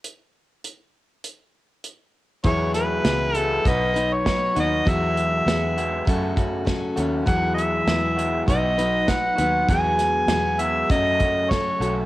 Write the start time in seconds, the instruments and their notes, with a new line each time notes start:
0.04 closed hi-hat
0.64 closed hi-hat
1.24 closed hi-hat
1.84 closed hi-hat
2.44 clean electric guitar E2 B2 F#3 G#3 B3 E4, fingered electric bass E2, steel-string acoustic guitar E3 F#3 B3 E4 G#4, harmonica C#5, kick, closed hi-hat
2.74 harmonica B4, snare, closed hi-hat
3.04 fingered electric bass C#2, steel-string acoustic guitar F#3 B3 E4 G#4, snare, closed hi-hat
3.34 clean electric guitar B2 F#3 G#3 B3 E4, harmonica A4, closed hi-hat
3.38 clean electric guitar E2
3.65 fingered electric bass B1, clean electric guitar B2 F#3 B3 D#4 F#4, steel-string acoustic guitar F#3 B3 D#4 B4, harmonica D#5, kick, closed hi-hat
3.94 steel-string acoustic guitar F#3 B3 D#4 B4, closed hi-hat
4.13 harmonica C#5
4.24 steel-string acoustic guitar F#3 B3 D#4 B4, kick, snare, closed hi-hat
4.55 fingered electric bass D#2, clean electric guitar F#3 B3 D#4 F#4, steel-string acoustic guitar F#3 B3 D#4 B4, closed hi-hat
4.59 clean electric guitar B2, harmonica D#5
4.85 clean electric guitar E2 B2 F#3 G#3 B3, fingered electric bass E2, steel-string acoustic guitar E3 F#3 B3 F#4 G#4, kick, closed hi-hat
4.89 clean electric guitar F#4, harmonica E5
5.17 closed hi-hat
5.45 fingered electric bass E2, steel-string acoustic guitar F#3 B3 F#4, snare, closed hi-hat
5.49 steel-string acoustic guitar G#4
5.77 clean electric guitar E2 B2 F#3 G#3 B3 F#4, closed hi-hat
6.05 clean electric guitar F#2 C#3 F#3 A3 C#4 F#4, fingered electric bass F#2, steel-string acoustic guitar F#3 C#4 F#4 A4, kick, closed hi-hat
6.36 steel-string acoustic guitar C#4 F#4 A4, kick, closed hi-hat
6.65 steel-string acoustic guitar F#3 C#4 F#4 A4, kick, snare, closed hi-hat
6.96 fingered electric bass D#2, clean electric guitar F#2 C#3 F#3 A3 C#4 F#4, steel-string acoustic guitar C#4 F#4 A4, closed hi-hat
7.25 clean electric guitar E2 B2 F#3 G#3 B3 F#4, fingered electric bass E2, steel-string acoustic guitar E3 F#3 B3 E4 G#4, harmonica F#5, kick, closed hi-hat
7.55 harmonica E5, closed hi-hat
7.87 fingered electric bass E2, steel-string acoustic guitar F#3 B3 E4 G#4, snare, closed hi-hat
8.17 clean electric guitar E2 B2 F#3 G#3 B3 F#4, closed hi-hat
8.46 fingered electric bass B1, clean electric guitar B2 F#3 B3 D#4 F#4, steel-string acoustic guitar F#3 B3 D#4, harmonica D#5, kick, closed hi-hat
8.51 steel-string acoustic guitar B4
8.78 steel-string acoustic guitar F#3 B3 D#4 B4, closed hi-hat
9.07 steel-string acoustic guitar F#3 B3 D#4 B4, harmonica F#5, kick, snare, closed hi-hat
9.36 fingered electric bass D#2, clean electric guitar B2 F#3 B3 D#4 F#4, steel-string acoustic guitar D#4 B4, closed hi-hat
9.41 steel-string acoustic guitar F#3 B3
9.68 clean electric guitar E2 B2 E3 G#3 B3 F#4, fingered electric bass E2, steel-string acoustic guitar E3 F#3 B3 F#4 G#4, harmonica G#5, kick, closed hi-hat
9.99 snare, closed hi-hat
10.28 fingered electric bass E2, steel-string acoustic guitar F#3 B3, snare, closed hi-hat
10.32 steel-string acoustic guitar F#4 G#4
10.59 clean electric guitar E2 B2 E3 G#3 B3 F#4, harmonica E5, closed hi-hat
10.90 clean electric guitar F#2 C#3 F#3 A3 C#4 F#4, fingered electric bass F#2, steel-string acoustic guitar F#3 C#4 F#4 A4, harmonica D#5, kick, closed hi-hat
11.20 steel-string acoustic guitar F#4 A4, kick, closed hi-hat
11.24 steel-string acoustic guitar C#4
11.50 steel-string acoustic guitar F#3 C#4 F#4 A4, harmonica C#5, kick, snare, closed hi-hat
11.80 fingered electric bass B1, clean electric guitar F#2 C#3 F#3 A3 C#4 F#4, steel-string acoustic guitar F#4 A4, closed hi-hat
11.84 steel-string acoustic guitar C#4